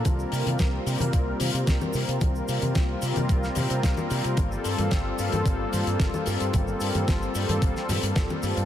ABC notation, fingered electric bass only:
X:1
M:4/4
L:1/16
Q:1/4=111
K:Gdor
V:1 name="Fingered electric bass" clef=bass
C,, z C, C, C,, z C, C, C,, z C, C, C,, z C, C, | C,, z C, C, C,, z C, C, C,, z C, C, C,, z C, C, | G,,, z G,, G,, G,,, z G,, G,, G,,, z G,, G,, G,,, z G,, G,, | G,,, z G,, G,, G,,, z G,, G,, G,,, z G,, G,, G,,, z G,, G,, |]